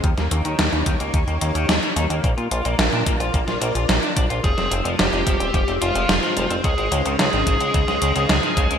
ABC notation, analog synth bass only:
X:1
M:4/4
L:1/16
Q:1/4=109
K:Fm
V:1 name="Analog synth bass" clef=bass
E,, E,, E,, E,, E,, E,, E,, D,, E,, E,, E,, E,, E,, z E,, E,, | B,,, B,, B,,, B,,, B,,, B,, B,, B,,, B,,, B,,, B,,, B,,, B,,, z B,,, B,,, | F,,, F,,, F,,, F,,, F,,, F,,, F,,, E,,, F,,, F,,, F,,, F,,, F,,, z F,,, F,,, | D,, A,,, D,, D,, D,, A,,, A,,, D,, D,, D,, D,, D,, D,, z D,, D,, |]